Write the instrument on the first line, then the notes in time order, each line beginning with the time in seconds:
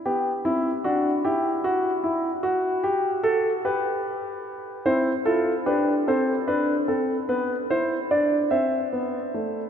grand piano
0.06 B3 G4
0.45 C4 E4
0.84 D4 F#4
1.25 E4 G4
1.64 F#4
2.04 E4
2.43 F#4
2.84 G4
3.23 A4
3.65 G4 B4
4.86 C4 E4 C5
5.26 E4 F4 A4
5.66 D4 G4 B4
6.08 C4 A4 C5
6.47 D4 B4
6.88 C4 A4
7.29 B3 B4
7.70 E4 C5
8.11 D4 D5
8.51 C4 C5 E5
8.93 B3
9.34 A3